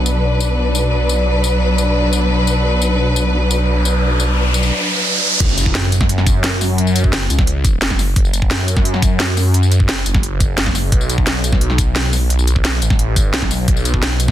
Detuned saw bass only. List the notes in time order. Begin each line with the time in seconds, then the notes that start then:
Already playing: B1
5.40 F#1
5.75 F#2
7.13 F#1
7.30 C#2
7.82 F#1
8.16 F#1
8.51 F#2
9.89 F#1
10.06 F#1
10.92 B1
11.27 B1
12.65 B1
12.82 A1
13.33 B1
13.68 B1
14.02 B1